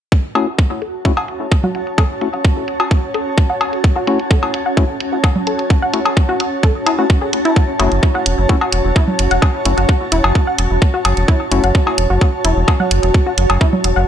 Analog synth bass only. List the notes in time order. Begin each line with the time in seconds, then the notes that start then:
7.80 F#1
7.92 F#1
8.26 E1
8.38 F#1
8.72 E1
8.85 E1
9.19 F#1
9.31 E1
9.65 F#1
9.77 F#1
10.12 E1
10.24 F#1
10.58 E1
10.71 E1
11.05 F#1
11.17 E1
11.52 F#1
11.64 F#1
11.98 E1
12.10 F#1
12.44 E1
12.56 E1
12.91 F#1
13.03 E1
13.38 F#1
13.50 F#1
13.84 E1
13.96 F#1